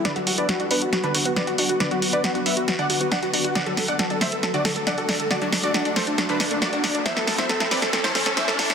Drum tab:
HH |xxoxxxoxxxoxxxox|xxoxxxoxxxoxxxox|xxoxxxoxxxoxxxox|xxoxxxoxxxoxxxox|
SD |o---o---o---o---|o---o---o---o---|o-o-o-o-o-o-o-o-|o-o-o-o-o-o-o-o-|

HH |xxoxxxoxxxoxxxox|
SD |oooooooooooooooo|